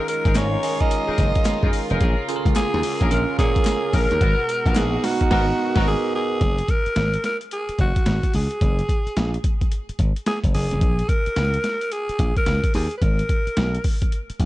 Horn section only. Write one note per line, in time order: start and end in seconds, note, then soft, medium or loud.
0.25 0.42 D#4 medium
0.25 0.42 G#4 medium
0.25 0.43 A#4 medium
1.07 1.25 D#4 medium
1.07 1.25 G#4 medium
1.07 1.25 A#4 medium
1.63 1.80 D#4 medium
1.63 1.80 G#4 medium
1.63 1.80 A#4 medium
1.90 2.08 D#4 medium
1.90 1.99 G#4 medium
1.90 2.00 A#4 medium
2.00 2.27 C#4 medium
2.00 2.27 G#4 medium
2.00 2.27 A#4 loud
3.00 3.18 C#4 medium
3.00 3.18 G#4 medium
3.00 3.18 A#4 medium
3.93 4.15 C#4 medium
3.93 4.15 G#4 medium
3.93 4.15 A#4 medium
4.21 4.42 B3 medium
4.21 4.42 F#4 medium
4.21 4.43 A#4 loud
4.65 4.83 B3 medium
4.65 4.83 F#4 medium
4.65 4.83 A#4 medium
5.31 5.46 B3 loud
5.31 5.46 F#4 loud
5.31 5.46 A#4 medium
5.75 5.89 B3 loud
5.75 5.89 F#4 medium
5.75 5.89 A#4 loud